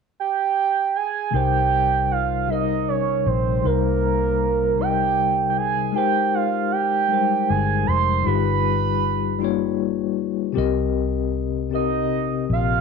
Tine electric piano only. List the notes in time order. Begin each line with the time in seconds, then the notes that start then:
1.31 C3 G3 D#4 A#4
1.36 C5
2.47 C3 G3 D#4
2.52 A#4 D#5
3.61 C3 G3 D#4
3.66 A#4 C5
4.76 C3 G3 D#4
4.81 A#4 D#5
5.92 G#3 D#4 G4
5.96 A#4 C5
7.08 G3 G#3 D#4 A#4
7.14 C5
8.23 G3 D#4 F4
8.27 G4 B4
9.39 G3 D#4 F4
9.43 A#3 C#5
10.52 C3 C4 G4
10.57 A#4 D#5
11.70 C3 C4 G4 A#4
11.75 D#5